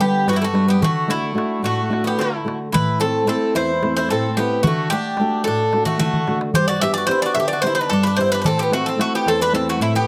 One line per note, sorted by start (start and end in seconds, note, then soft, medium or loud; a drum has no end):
0.00 0.26 D3 medium
0.00 0.44 G3 soft
0.00 0.43 B3 soft
0.00 0.26 B3 medium
0.00 0.44 D4 medium
0.00 0.29 G4 medium
0.26 0.80 G2 medium
0.26 0.35 B3 medium
0.26 0.36 F#4 medium
0.26 darbuka tek medium
0.33 0.40 G3 medium
0.33 0.43 E4 medium
0.42 0.67 A3 medium
0.42 0.70 F#4 medium
0.53 0.76 G3 soft
0.53 0.76 B3 soft
0.53 0.76 D4 medium
0.53 darbuka tek medium
0.68 0.81 B3 medium
0.68 0.83 G4 medium
0.81 1.34 D3 medium
0.81 1.08 A3 medium
0.81 1.11 F#4 medium
0.81 darbuka dum medium
1.08 1.33 A3 soft
1.08 1.61 A3 medium
1.08 1.34 D4 soft
1.08 1.61 E4 medium
1.08 1.34 F#4 medium
1.08 darbuka tek medium
1.24 darbuka tek soft
1.34 1.79 A3 medium
1.34 1.79 D4 soft
1.34 1.79 F#4 medium
1.34 darbuka tek medium
1.62 2.16 A2 medium
1.62 2.02 A3 medium
1.62 2.03 F#4 medium
1.62 darbuka tek medium
1.89 2.34 A3 medium
1.89 2.34 D4 medium
1.89 2.34 F#4 medium
1.89 darbuka tek medium
2.04 2.17 B3 medium
2.04 2.20 G4 medium
2.18 2.71 D3 medium
2.18 2.57 A3 medium
2.18 2.58 E4 medium
2.18 darbuka tek medium
2.44 2.67 A3 medium
2.44 2.67 D4 soft
2.44 2.68 F#4 soft
2.44 darbuka tek medium
2.72 3.26 A2 medium
2.72 2.98 E4 medium
2.72 2.99 B4 loud
2.72 darbuka dum loud
3.00 3.26 A3 soft
3.00 3.25 C4 medium
3.00 3.26 C4 soft
3.00 3.26 E4 medium
3.00 3.26 A4 medium
3.00 darbuka tek medium
3.27 3.71 A3 medium
3.27 3.71 C4 soft
3.27 3.53 C4 medium
3.27 3.71 E4 medium
3.27 3.55 A4 medium
3.27 darbuka tek medium
3.54 4.07 E2 medium
3.54 3.93 E4 medium
3.54 3.95 C5 medium
3.54 darbuka tek medium
3.82 4.26 A3 medium
3.82 4.26 C4 medium
3.82 4.26 E4 medium
3.82 darbuka tek medium
3.97 4.10 E4 medium
3.97 4.09 C5 medium
4.09 4.63 A2 medium
4.09 4.36 C4 medium
4.09 4.35 A4 medium
4.09 darbuka tek medium
4.37 4.58 A3 medium
4.37 4.63 B3 medium
4.37 4.59 C4 soft
4.37 4.59 E4 medium
4.37 4.62 G4 medium
4.63 4.91 D3 medium
4.63 4.89 F#4 medium
4.63 darbuka dum loud
4.67 4.91 A3 medium
4.78 darbuka tek soft
4.90 5.18 A3 medium
4.90 5.19 D4 soft
4.90 5.42 D4 medium
4.90 5.44 G4 loud
4.90 5.35 F#5 medium
4.90 darbuka tek medium
5.05 darbuka tek soft
5.17 5.46 A3 medium
5.17 5.63 D4 soft
5.17 5.63 F#4 medium
5.17 darbuka tek medium
5.44 5.99 A2 medium
5.44 5.85 D4 medium
5.44 5.83 A4 medium
5.44 darbuka tek medium
5.60 darbuka tek soft
5.73 6.17 A3 medium
5.73 6.17 D4 soft
5.73 6.17 F#4 medium
5.73 darbuka tek medium
5.85 5.98 A3 medium
5.85 5.98 F#4 medium
5.85 darbuka dum medium
5.99 6.53 D3 medium
5.99 6.38 A3 medium
5.99 6.38 F#4 medium
5.99 darbuka dum medium
6.14 darbuka dum medium
6.28 6.49 A3 soft
6.28 6.49 D4 soft
6.28 6.50 F#4 medium
6.28 darbuka tek medium
6.41 darbuka tek medium
6.54 7.08 G2 medium
6.54 6.67 G4 medium
6.54 6.67 C5 loud
6.54 darbuka dum medium
6.68 6.81 F#4 medium
6.68 6.81 D5 medium
6.81 7.08 B3 soft
6.81 7.08 D4 soft
6.81 7.08 G4 medium
6.81 6.95 G4 medium
6.81 6.93 E5 loud
6.81 darbuka tek medium
6.94 7.09 F#4 medium
6.94 7.06 D5 loud
6.94 darbuka tek soft
7.07 7.52 B3 soft
7.07 7.53 D4 soft
7.07 7.53 G4 medium
7.07 7.22 C5 loud
7.07 darbuka tek medium
7.11 7.23 E4 medium
7.22 7.37 F#4 medium
7.22 7.34 D5 loud
7.35 7.89 D3 medium
7.35 7.47 E5 medium
7.35 darbuka tek medium
7.40 7.51 G4 medium
7.48 7.61 D5 medium
7.53 7.64 F#4 medium
7.62 8.07 B3 medium
7.62 8.07 D4 soft
7.62 8.07 G4 medium
7.62 7.74 C5 loud
7.62 darbuka tek medium
7.67 7.78 E4 medium
7.75 7.90 B4 medium
7.81 7.92 D4 medium
7.89 8.44 G2 medium
7.89 8.05 D4 medium
7.89 8.03 A4 medium
7.89 darbuka tek medium
8.03 8.18 D4 medium
8.03 8.16 B4 medium
8.16 8.40 B3 soft
8.16 8.40 D4 soft
8.16 8.40 G4 soft
8.16 8.31 C5 medium
8.16 darbuka tek medium
8.21 8.32 E4 medium
8.32 8.43 D4 medium
8.32 8.40 B4 medium
8.42 8.98 A2 medium
8.42 8.46 D4 medium
8.42 8.45 B4 medium
8.42 darbuka dum medium
8.46 8.59 C4 medium
8.46 8.59 A4 medium
8.59 8.73 B3 medium
8.59 8.73 G4 medium
8.71 8.97 A3 soft
8.71 8.86 A3 medium
8.71 8.97 C4 soft
8.71 8.98 E4 medium
8.71 8.86 F#4 medium
8.71 darbuka tek medium
8.86 9.00 C4 medium
8.86 9.00 A4 medium
8.86 darbuka tek soft
8.98 9.42 A3 medium
8.98 9.13 A3 medium
8.98 9.42 C4 soft
8.98 9.43 E4 soft
8.98 9.14 F#4 medium
8.98 darbuka tek medium
9.15 9.27 B3 medium
9.15 9.28 G4 medium
9.26 9.79 E2 medium
9.26 9.40 C4 medium
9.26 9.40 A4 medium
9.26 darbuka tek medium
9.41 9.54 D4 medium
9.41 9.54 B4 medium
9.52 9.97 A3 medium
9.52 9.97 C4 soft
9.52 9.67 C4 medium
9.52 9.97 E4 medium
9.52 9.67 A4 medium
9.52 darbuka tek medium
9.69 9.80 A3 medium
9.69 9.82 F#4 medium
9.80 10.07 A2 medium
9.80 9.94 A3 medium
9.80 9.94 E4 medium
9.80 darbuka tek medium
9.95 10.07 B3 medium
9.95 10.07 G4 medium